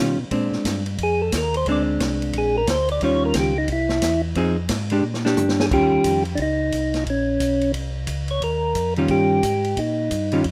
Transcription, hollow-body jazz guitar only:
0.00 D#3 G3 C#4 F4
0.31 G#3 C4 D4
1.68 G#3 C4 D4
3.02 D#3 G3 C#4 F4
4.36 F3 C4 D#4 G#4
4.92 G#3 D4 G4
5.25 D4 G4
5.72 D#3 G3 C#4 F4
8.97 D#3 G3 C#4 F4
10.33 D#3 G3 C#4 F4

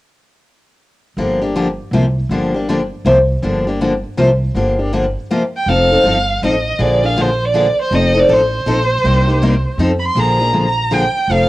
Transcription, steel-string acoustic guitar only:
1.18 D3 F3 A#3 D4 G4
1.42 A#3 D4 G4
1.56 D3 F3 A#3 D4 G4
1.93 C3 F3 A#3 F4 G4 C5
2.30 D3 F3 A#3 D4 G4
2.54 A#3 D4 G4
2.69 D3 F3 A#3 D4 G4
3.05 C3 F3 A#3 F4 G4 C5
3.42 D3 F3 A#3 D4 G4
3.67 A#3 D4 G4
3.81 D3 F3 A#3 D4 G4
4.17 C3 F3 A#3 F4 G4 C5
4.55 D3 F3 A#3 D4 G4
4.79 A#3 D4 G4
4.93 D3 F3 A#3 D4 G4
5.31 C3 F3 A#3 F4 G4 C5
5.68 F3 C4 D#4 A4
5.92 C4 D#4 A4
6.05 F3 C4 D#4 A4
6.43 F3 C4 D#4 A4
6.79 D3 F3 A#3 D4 G#4
7.03 A#3 D4 G#4
7.17 D3 F3 A#3 D4 G#4
7.54 D3 F3 A#3 D4 G#4
7.91 F3 C4 D#4 A4
8.15 C4 D#4 A4
8.29 F3 C4 D#4 A4
8.66 F3 C4 D#4 A4
9.05 C3 G3 A#3 D#4 G4
9.27 A#3 D#4 G4
9.42 C3 G3 A#3 D#4 G4
9.79 F3 C4 D#4 A4
10.16 D3 F3 A#3 D4 G#4
10.40 A#3 D4 G#4
10.53 D3 F3 A#3 D4 G#4
10.91 D3 F3 A#3 D4 G#4
11.30 F3 C4 D#4 A4

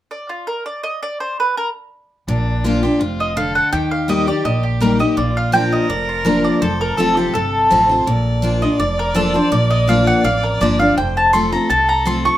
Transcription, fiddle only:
2.28 D4
2.65 F4
2.83 G4
3.00 F4
3.37 A4
3.73 G4
5.17 F4
5.53 A#4
6.62 A4
7.71 C5
7.89 C5
8.07 D5
10.97 C5
11.34 A4

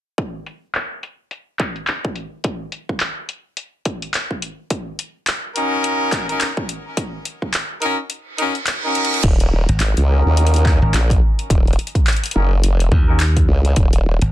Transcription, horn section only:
5.56 C#4 D#4 F#4 A#4
6.29 C#4 D#4 F#4 A#4
7.82 C#4 D#4 F#4 A#4
8.38 C#4 D#4 F#4 A#4
8.83 C#4 D#4 F#4 A#4
10.08 C#4 D#4 F#4 A#4
10.81 C#4 D#4 F#4 A#4
12.35 C#4 D#4 F#4 A#4
13.08 C#4 D#4 F#4 A#4

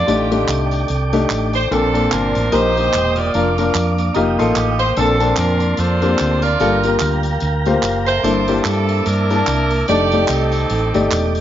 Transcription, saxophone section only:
Already playing: F4 G4 D5
1.55 C5
1.72 C4 D4 A4
2.12 D4 F4 A#4
2.53 D#4 G4 C5
3.17 F4 A#4 D5
4.80 C5
4.97 C4 D4 A4
5.38 D4 F4 A#4
5.79 F4 A4 C5
6.43 F4 A#4 D5
8.07 E4 A4 C5
8.66 C4 E4 A4
9.07 D4 E4 A#4
9.89 G4 A4 D5
10.29 C4 D#4 A4

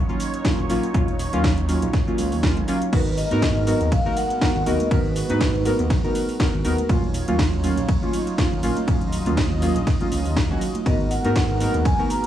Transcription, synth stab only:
0.09 F#3 A#3 C#4 F4
0.45 F#3 A#3 C#4 F4
0.69 F#3 A#3 C#4 F4
0.94 F#3 A#3 C#4 F4
1.33 F#3 A#3 C#4 F4
1.69 F#3 A#3 C#4 F4
2.07 F#3 A#3 C#4 F4
2.43 F#3 A#3 C#4 F4
2.68 F#3 A#3 C#4 F4
2.92 B3 D#4 F#4 A#4
3.31 B3 D#4 F#4 A#4
3.67 B3 D#4 F#4 A#4
4.05 B3 D#4 F#4 A#4
4.41 B3 D#4 F#4 A#4
4.66 B3 D#4 F#4 A#4
4.91 B3 D#4 F#4 A#4
5.29 B3 D#4 F#4 B4
5.65 B3 D#4 F#4 A#4
6.04 B3 D#4 F#4 A#4
6.40 B3 D#4 F#4 A#4
6.64 B3 D#4 F#4 A#4
6.89 F#3 A#3 C#4 F4
7.28 F#3 A#3 C#4 F4
7.63 F#3 A#3 C#4 F4
8.02 F#3 A#3 C#4 F4
8.38 F#3 A#3 C#4 F4
8.63 F#3 A#3 C#4 F4
8.87 F#3 A#3 C#4 F4
9.26 F#3 A#3 C#4 F4
9.62 F#3 A#3 C#4 F4
10.00 F#3 A#3 C#4 F4
10.50 F#3 A#3 C#4 F#4
10.86 B3 D#4 F#4 A#4
11.24 B3 D#4 F#4 A#4
11.60 B3 D#4 F#4 A#4
11.99 B3 D#4 F#4 A#4

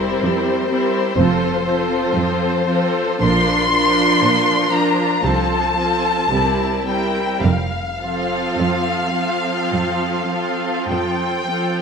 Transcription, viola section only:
Already playing: G3 C4
0.70 G3 C4
1.18 F3 C4
1.65 F3 C4
2.68 F3 C4
3.22 F3 D4
3.71 F3 D4
4.71 F3 D4
5.24 F3 C4
5.77 F3 C4
6.31 G3 C4
6.85 G3 C4
8.00 F3 C4
9.13 F3 C4
10.30 F3 C4
11.48 F3 C4

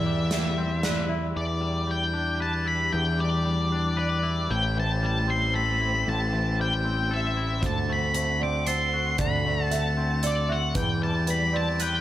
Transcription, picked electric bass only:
Already playing: E2
1.36 E2
2.94 E2
4.50 A1
6.08 A1
7.63 D2
9.19 D2
10.76 E2

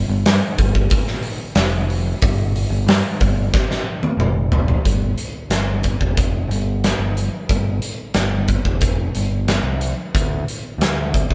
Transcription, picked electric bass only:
0.08 G1
0.26 G2
0.58 G1
1.55 F1
2.22 G1
2.69 G1
2.87 G2
3.20 G1
4.17 F1
4.85 G1
5.50 G1
6.01 F1
6.48 G1
6.98 G1
7.49 G1
8.14 G1
8.65 F1
9.15 G1
9.63 C2
10.14 D2
10.78 D2
11.30 C2

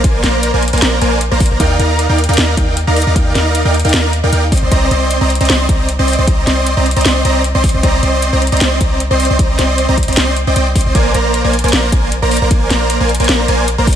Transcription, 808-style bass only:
0.04 A#1
0.24 A#1
0.54 A#1
0.73 A#1
0.82 A#1
1.01 A#1
1.32 A#1
1.51 A#1
1.60 D#2
1.79 D#2
2.09 D#2
2.29 D#2
2.38 D#2
2.57 D#2
2.87 D#2
3.07 D#2
3.16 D#2
3.35 D#2
3.65 D#2
3.85 D#2
3.94 D#2
4.24 D#2
4.32 D#2
4.52 C2
4.62 C2
4.72 C2
4.91 C2
5.21 C2
5.41 C2
5.50 C2
5.69 C2
5.99 C2
6.19 C2
6.27 C2
6.47 C2
6.77 C2
6.96 C2
7.05 C2
7.25 C2
7.55 C2
7.74 C2
7.83 C2
8.03 C2
8.33 C2
8.52 C2
8.61 C2
8.81 C2
9.11 C2
9.30 C2
9.39 C2
9.59 C2
9.89 C2
10.08 C2
10.17 C2
10.47 C2
10.56 C2
10.76 C2
10.86 C2
10.95 A#1
11.14 A#1
11.45 A#1
11.64 A#1
11.73 A#1
11.92 A#1
12.22 A#1
12.42 A#1
12.51 A#1
12.70 A#1
13.00 A#1
13.20 A#1
13.29 A#1
13.48 A#1
13.78 A#1

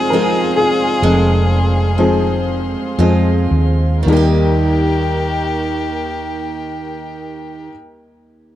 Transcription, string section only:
Already playing: G#4 C5 F5 C6
4.07 D#3 D#4 A#4 G5

